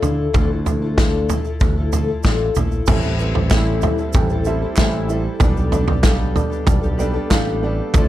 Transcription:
0.03 fingered electric bass D3, twelve-string acoustic guitar A3 E4 F4 A4, floor tom, shaker
0.33 fingered electric bass D2, twelve-string acoustic guitar D3 A3 E4 F4 A4, kick, floor tom, shaker
0.51 twelve-string acoustic guitar E4 F4 A4
0.66 floor tom, shaker
0.82 twelve-string acoustic guitar E4 F4 A4
0.97 twelve-string acoustic guitar D3 A3 E4 F4 A4, kick, snare, shaker
1.29 twelve-string acoustic guitar A3 E4 F4 A4, floor tom, shaker
1.45 twelve-string acoustic guitar E4 F4 A4, shaker
1.60 fingered electric bass D2, kick, floor tom, shaker
1.77 twelve-string acoustic guitar E4 F4 A4
1.93 twelve-string acoustic guitar A3 E4 F4 A4, floor tom, shaker
2.08 twelve-string acoustic guitar E4 F4 A4
2.23 fingered electric bass A1, twelve-string acoustic guitar D3 A3 E4 F4 A4, kick, snare, shaker
2.55 fingered electric bass A#1, twelve-string acoustic guitar A3 E4 F4 A4, floor tom, shaker
2.71 shaker
2.86 felt piano A1 A2 G3 C4 E4 A4 E5, fingered electric bass A1, twelve-string acoustic guitar A2 E3 G3 C4 E4 A4, kick, floor tom, crash, shaker
3.02 twelve-string acoustic guitar G3 C4 E4 A4, shaker
3.18 twelve-string acoustic guitar G3 C4 E4 A4, felt piano G3 C4 E4 A4 B4, shaker
3.34 twelve-string acoustic guitar G3 C4 E4 A4, floor tom
3.50 twelve-string acoustic guitar A2 E3 G3 C4 E4 A4, felt piano G3 C4 E4 A4 E5, kick, snare, clap, shaker
3.82 felt piano G3 C4 E4 A4 E5, floor tom, shaker
3.98 twelve-string acoustic guitar G3 C4 E4 A4, shaker
4.13 fingered electric bass A1, felt piano G3 C4 E4 A4 G5, kick, floor tom, shaker
4.29 twelve-string acoustic guitar C4 E4 A4, shaker
4.33 twelve-string acoustic guitar G3
4.45 twelve-string acoustic guitar G3 C4 E4, felt piano G3 C4 E4 A4 E5, shaker
4.49 twelve-string acoustic guitar A4
4.62 twelve-string acoustic guitar G3 C4 E4 A4
4.76 fingered electric bass A1, twelve-string acoustic guitar A2 E3 G3 C4 E4 A4, felt piano G3 C4 E4 A4 E5, kick, snare, clap, shaker
5.08 felt piano G3 C4 E4 A4 E5, twelve-string acoustic guitar G3 C4 E4 A4, shaker
5.40 fingered electric bass B1, felt piano B1 B2 G3 B3 D4 A4 D5, twelve-string acoustic guitar B3 D4 G4 A4, kick, floor tom, shaker
5.56 twelve-string acoustic guitar D4 G4 A4, shaker
5.71 felt piano G3 B3 D4 A4 D5, twelve-string acoustic guitar B3 D4 G4 A4, floor tom, shaker
5.88 twelve-string acoustic guitar D4 G4 A4, floor tom
6.03 felt piano G3 B3 D4 A4 F5, twelve-string acoustic guitar B3 D4 G4 A4, kick, snare, clap, shaker
6.35 felt piano G3 B3 D4 A4 D5, floor tom, shaker
6.50 twelve-string acoustic guitar D4 G4 A4, shaker
6.67 fingered electric bass B1, felt piano G3 B3 D4 A4 D5, kick, floor tom, shaker
6.81 twelve-string acoustic guitar D4 G4 A4, shaker
6.98 felt piano G3 B3 D4 A4 D5, twelve-string acoustic guitar B3 D4 G4 A4, shaker
7.14 twelve-string acoustic guitar D4 G4 A4
7.30 fingered electric bass A1, felt piano G3 B3 D4 A4 F5, twelve-string acoustic guitar B3 D4 G4 A4, kick, snare, clap, shaker
7.62 felt piano G3 B3 D4 A4 D5, twelve-string acoustic guitar B3 D4 G4 A4
7.94 fingered electric bass D2, felt piano D2 D3 F3 D4 E4 A4 D5, twelve-string acoustic guitar D3 F3 A3 D4 E4 A4, kick, floor tom, shaker

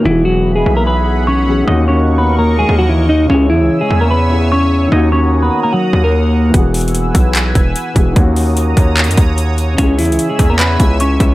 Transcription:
0.01 808-style bass E1, grand piano E3 B3, analog synth pad G#4 E5 F#5 B5
0.05 clean electric guitar E3 E4, grand piano F#4
0.10 grand piano G#4
0.25 clean electric guitar F#3 F#4
0.56 clean electric guitar G#3 G#4
0.66 808-style bass B1
0.77 clean electric guitar A#3 A#4
0.87 clean electric guitar B3 B4
1.27 clean electric guitar C#4 C#5
1.45 grand piano E3 B3 F#4
1.49 grand piano G#4
1.63 grand piano D#3 A#3
1.67 808-style bass D#2, grand piano C#4 F#4, clean electric guitar D#4 D#5, analog synth pad A#4 D#5 C#6
1.88 clean electric guitar C#4 C#5
2.18 clean electric guitar B3 B4
2.39 clean electric guitar A#3 A#4
2.59 clean electric guitar G#3 G#4
2.69 808-style bass D#2
2.79 clean electric guitar F#3 F#4
2.89 clean electric guitar E3 E4
3.09 clean electric guitar D#4 D#5
3.26 808-style bass C#2, grand piano C#3 C#4, analog synth pad C#5 E5 G#5 E6
3.30 clean electric guitar C#4 C#5, grand piano E4
3.34 grand piano G#4
3.50 808-style bass E2, clean electric guitar E3 E4
3.60 808-style bass C#2
3.81 clean electric guitar G#3 G#4
3.91 808-style bass E2
4.01 clean electric guitar A#3 A#4
4.11 clean electric guitar B3 B4
4.29 grand piano C#3 C#4 E4
4.33 grand piano G#4
4.52 clean electric guitar C#4 C#5
4.87 grand piano D#3 A#3
4.92 808-style bass D#2, grand piano C#4 F#4, clean electric guitar D#4 D#5, analog synth pad F#5 A#5 D#6
5.12 clean electric guitar C#4 C#5
5.42 clean electric guitar B3 B4
5.63 clean electric guitar A#3 A#4
5.73 clean electric guitar F#3 F#4
5.93 808-style bass D#2
6.04 clean electric guitar A#3 A#4
6.50 808-style bass E1, grand piano E3 B3, kick, closed hi-hat
6.54 grand piano F#4, analog synth pad B4 G#5 E6
6.58 grand piano G#4
6.74 closed hi-hat, open hi-hat
6.81 closed hi-hat
6.88 closed hi-hat
6.95 closed hi-hat
7.15 808-style bass B1, kick, closed hi-hat
7.35 clap, closed hi-hat
7.55 808-style bass E1, kick, closed hi-hat
7.76 closed hi-hat
7.94 808-style bass E1, grand piano E3 B3 F#4, kick, closed hi-hat
7.98 grand piano G#4
8.12 grand piano D#3 A#3
8.16 808-style bass D#2, grand piano C#4 F#4, analog synth pad C#5 A#5 D#6, kick, closed hi-hat
8.36 open hi-hat
8.57 closed hi-hat
8.77 808-style bass D#2, kick, closed hi-hat
8.97 clap, closed hi-hat
9.04 808-style bass F#2, closed hi-hat
9.11 closed hi-hat
9.17 808-style bass D#2, kick, closed hi-hat
9.38 closed hi-hat
9.58 closed hi-hat
9.74 808-style bass C#2, grand piano C#3 C#4, analog synth pad E5 G#5 E6, kick, closed hi-hat
9.78 clean electric guitar C#4 C#5, grand piano E4
9.83 grand piano G#4
9.98 808-style bass E2, clean electric guitar E3 E4, closed hi-hat, open hi-hat
10.05 808-style bass C#2, closed hi-hat
10.12 closed hi-hat
10.19 closed hi-hat
10.29 clean electric guitar G#3 G#4
10.39 808-style bass E2, kick, closed hi-hat
10.50 clean electric guitar A#3 A#4
10.59 clean electric guitar B3 B4, clap, closed hi-hat
10.77 808-style bass C#2, grand piano C#3 C#4 E4, kick, closed hi-hat
10.81 grand piano G#4
11.00 clean electric guitar C#4 C#5, closed hi-hat
11.20 808-style bass C#2, kick, closed hi-hat

